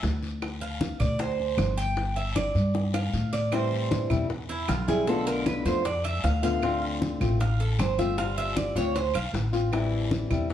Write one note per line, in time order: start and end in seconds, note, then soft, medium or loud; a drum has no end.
0.03 0.94 D2 medium
0.03 high bongo medium
0.03 low bongo medium
0.03 high conga soft
0.03 short guiro medium
0.23 high bongo soft
0.23 high conga soft
0.23 short guiro medium
0.42 high bongo medium
0.42 high conga soft
0.42 long guiro medium
0.42 claves medium
0.61 0.98 F5 medium
0.61 high conga soft
0.81 high bongo medium
0.81 high conga medium
0.81 short guiro medium
1.00 1.54 D2 medium
1.00 1.19 D5 medium
1.00 high conga soft
1.00 low conga medium
1.00 short guiro medium
1.00 claves medium
1.19 1.74 C5 medium
1.19 high bongo medium
1.19 high conga soft
1.19 long guiro medium
1.39 high conga soft
1.57 2.49 G1 medium
1.57 high bongo medium
1.57 low bongo medium
1.57 high conga medium
1.57 short guiro medium
1.57 claves medium
1.77 2.14 G5 loud
1.77 short guiro medium
1.97 high bongo medium
1.97 high conga soft
1.97 long guiro medium
2.16 2.35 E5 medium
2.16 high conga soft
2.36 2.90 D5 medium
2.36 high bongo medium
2.36 high conga medium
2.36 short guiro medium
2.36 claves medium
2.55 3.09 G2 medium
2.55 high bongo soft
2.55 high conga soft
2.55 short guiro medium
2.74 high bongo medium
2.74 high conga soft
2.74 long guiro medium
2.94 3.30 F5 medium
2.94 high bongo medium
2.94 high conga soft
2.94 claves medium
3.13 4.05 A2 medium
3.13 low bongo medium
3.13 high conga soft
3.13 short guiro medium
3.33 3.52 D5 medium
3.33 low bongo medium
3.33 high conga soft
3.33 short guiro medium
3.52 4.10 E3 medium
3.52 4.10 G3 medium
3.52 4.10 C4 medium
3.52 4.09 E4 medium
3.52 4.07 C5 medium
3.52 high bongo medium
3.52 high conga soft
3.52 long guiro medium
3.52 claves medium
3.72 high conga soft
3.91 high bongo medium
3.91 high conga medium
3.91 short guiro medium
4.10 4.65 E2 loud
4.10 4.29 G3 medium
4.10 4.29 C4 medium
4.10 4.29 E4 medium
4.10 high conga soft
4.10 low conga medium
4.10 short guiro medium
4.10 claves medium
4.29 muted nylon-string guitar stroke medium
4.29 high bongo medium
4.29 high conga soft
4.29 long guiro medium
4.49 4.68 E4 medium
4.49 high conga soft
4.68 5.60 B1 medium
4.68 4.88 F4 medium
4.68 high bongo medium
4.68 low bongo medium
4.68 high conga medium
4.68 short guiro medium
4.68 claves medium
4.88 5.08 G3 medium
4.88 5.07 C4 medium
4.88 5.07 E4 medium
4.88 5.07 G#4 medium
4.88 high conga medium
4.88 short guiro medium
5.07 5.65 B2 medium
5.07 5.65 D3 medium
5.07 5.66 A3 medium
5.07 5.65 B3 medium
5.07 5.65 F4 medium
5.07 5.26 A4 medium
5.07 high bongo medium
5.07 high conga soft
5.07 long guiro medium
5.27 5.46 A#4 loud
5.27 high conga soft
5.46 5.65 B4 medium
5.46 high bongo medium
5.46 high conga medium
5.46 short guiro medium
5.46 claves medium
5.65 6.20 F2 loud
5.65 5.84 D3 medium
5.65 5.84 A3 medium
5.65 5.85 B3 medium
5.65 5.84 F4 medium
5.65 5.85 C5 medium
5.65 high bongo soft
5.65 high conga soft
5.65 short guiro medium
5.85 6.04 D5 medium
5.85 muted nylon-string guitar stroke medium
5.85 high bongo medium
5.85 high conga soft
5.85 long guiro medium
6.04 6.23 E5 medium
6.04 high bongo soft
6.04 high conga soft
6.04 claves medium
6.24 7.15 D2 medium
6.24 6.42 F5 medium
6.24 high bongo medium
6.24 low bongo medium
6.24 high conga soft
6.24 short guiro medium
6.43 6.61 D3 medium
6.43 6.62 A3 medium
6.43 6.62 B3 medium
6.43 6.62 F4 medium
6.43 6.79 F5 medium
6.43 high bongo soft
6.43 high conga soft
6.43 short guiro medium
6.62 7.20 D3 medium
6.62 7.20 A3 medium
6.62 7.21 C4 medium
6.62 7.20 F4 medium
6.62 high bongo medium
6.62 high conga soft
6.62 long guiro medium
6.62 claves medium
6.82 high conga soft
7.02 high bongo medium
7.02 high conga medium
7.02 short guiro medium
7.20 7.75 A1 medium
7.20 7.40 A3 medium
7.20 7.40 C4 medium
7.20 7.40 F4 medium
7.20 high conga soft
7.20 low conga medium
7.20 short guiro medium
7.20 claves medium
7.40 7.59 F5 medium
7.40 muted nylon-string guitar stroke medium
7.40 high bongo medium
7.40 high conga soft
7.40 long guiro medium
7.60 7.79 A4 medium
7.60 high conga soft
7.79 8.70 G1 medium
7.79 7.98 C5 medium
7.79 high bongo medium
7.79 low bongo medium
7.79 high conga medium
7.79 short guiro medium
7.79 claves medium
7.98 8.17 A3 medium
7.98 8.17 C4 medium
7.98 8.17 F4 medium
7.98 8.17 E5 medium
7.98 high conga medium
7.98 short guiro medium
8.17 8.78 G3 medium
8.17 8.77 C4 medium
8.17 8.74 F4 medium
8.17 8.37 F5 medium
8.17 high bongo medium
8.17 high conga soft
8.17 long guiro medium
8.38 8.56 E5 loud
8.38 high conga soft
8.56 8.76 D5 medium
8.56 high bongo medium
8.56 high conga loud
8.56 short guiro medium
8.56 claves medium
8.75 9.12 D2 medium
8.75 8.94 C4 medium
8.75 8.94 F4 medium
8.75 8.95 C#5 medium
8.75 high bongo soft
8.75 high conga soft
8.75 short guiro medium
8.95 9.14 C5 medium
8.95 muted nylon-string guitar stroke medium
8.95 high bongo medium
8.95 high conga soft
8.95 long guiro medium
9.14 9.33 B1 medium
9.14 9.27 F5 medium
9.14 high bongo soft
9.14 high conga soft
9.14 claves medium
9.34 10.25 A1 medium
9.34 high bongo medium
9.34 low bongo medium
9.34 high conga soft
9.34 short guiro medium
9.53 9.72 C4 medium
9.53 9.72 F4 medium
9.53 high bongo soft
9.53 high conga soft
9.53 short guiro medium
9.72 10.30 E3 medium
9.72 10.30 G3 medium
9.72 10.30 C4 medium
9.72 10.29 E4 medium
9.72 high bongo medium
9.72 high conga soft
9.72 long guiro medium
9.72 claves medium
9.92 high conga soft
10.11 high bongo medium
10.11 high conga medium
10.11 short guiro medium
10.30 10.54 E2 medium
10.30 10.49 G3 medium
10.30 10.50 C4 medium
10.30 10.49 E4 medium
10.30 high conga soft
10.30 low conga medium
10.30 short guiro medium
10.30 claves medium
10.50 muted nylon-string guitar stroke medium
10.50 high bongo medium
10.50 high conga soft
10.50 long guiro medium